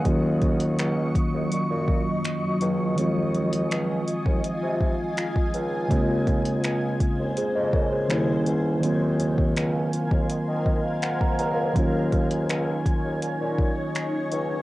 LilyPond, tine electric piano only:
<<
  \new Staff \with { instrumentName = "Tine electric piano" } { \time 4/4 \key ees \dorian \tempo 4 = 82 r1 | r1 | r2 <aes' c''>16 <c'' ees''>16 <bes' des''>16 <aes' c''>8 r8. | r2 r8 ees''8 ges''16 bes''16 bes''8 |
r1 | }
  \new Staff \with { instrumentName = "Tine electric piano" } { \time 4/4 \key ees \dorian <ees ges bes des' f'>1 | <ees f aes c' f'>1 | <des aes bes c' f'>2. <ees g bes des' fes'>4 | <ees ges bes c' f'>1 |
<ees ges bes des' f'>1 | }
>>